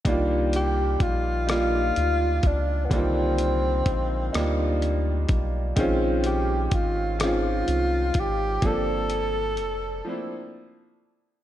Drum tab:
HH |xxxxxx|xxxxxx|xxxxxx|xxx---|
SD |---r--|---r--|---r--|------|
BD |o-o--o|o-o--o|o-o--o|o-----|